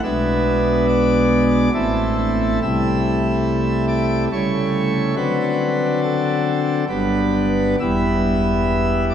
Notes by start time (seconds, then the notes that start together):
0.03 B1 B2 G#3 B3 D4 E5
0.88 D5
1.74 A1 A2 A3 C4 E4 A4
2.62 C2 C3 G3 A3 E4 E5
3.88 D5
4.31 C#3 G3 A3 E4 C#5
5.16 D3 F#3 C4 D4 B4
6.02 A4
6.89 G1 G2 G3 B3 D4 B4
7.80 E1 E2 G3 B3 E4 E5
9.09 D5